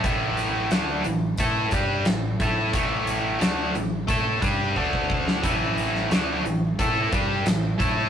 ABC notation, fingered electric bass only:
X:1
M:4/4
L:1/8
Q:1/4=89
K:Dlyd
V:1 name="Fingered electric bass" clef=bass
A,,,2 D,, A,,, A,, =G,, A,,, A,, | A,,,2 D,, A,,, A,, =G,, D,,2 | A,,,2 D,, A,,, A,, =G,, A,,, A,, |]